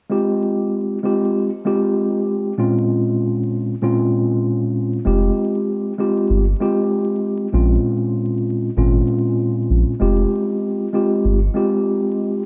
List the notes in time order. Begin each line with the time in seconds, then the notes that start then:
0.10 G#3 C4 F4 G4
1.03 G#3 C4 F4 G4
1.65 G#3 C4 F4 G4
2.58 A#2 G#3 C4 C#4 F4
3.82 A#2 G#3 C4 C#4 F4
5.05 F1 G#3 C4 F4 G4
5.98 G#3 C4 F4 G4
6.30 G1
6.60 G#3 C4 F4 G4
7.52 A#1 A#2 G#3 C4 C#4 F4
8.77 G#1 A#2 G#3 C4 C#4 F4
9.70 A#1
10.00 F1 G#3 C4 F4 G4
10.93 G#3 C4 F4 G4
11.25 G1
11.54 G#3 C4 F4 G4